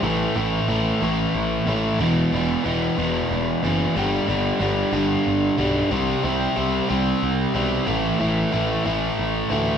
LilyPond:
<<
  \new Staff \with { instrumentName = "Overdriven electric guitar" } { \clef bass \time 6/8 \key a \minor \tempo 4. = 61 <a, e a>8 <a, e a>8 <a, e a>8 <a, e a>4 <a, e a>8 | <e, b, e>8 <e, b, e>8 <e, b, e>8 <e, b, e>4 <e, b, e>8 | <g, d g>8 <g, d g>8 <g, d g>8 <g, d g>4 <g, d g>8 | <c g c'>8 <c g c'>8 <c g c'>8 <c g c'>4 <c g c'>8 |
<a, e a>8 <a, e a>8 <a, e a>8 <a, e a>4 <a, e a>8 | }
  \new Staff \with { instrumentName = "Picked electric bass" } { \clef bass \time 6/8 \key a \minor a,,8 a,,8 a,,8 a,,8 a,,8 a,,8 | e,,8 e,,8 e,,8 e,,8 e,,8 fis,,8 | g,,8 g,,8 g,,8 g,,8 g,,8 b,,8 | c,8 c,8 c,8 c,8 c,8 b,,8 |
a,,8 a,,8 a,,8 a,,8 a,,8 d,8 | }
>>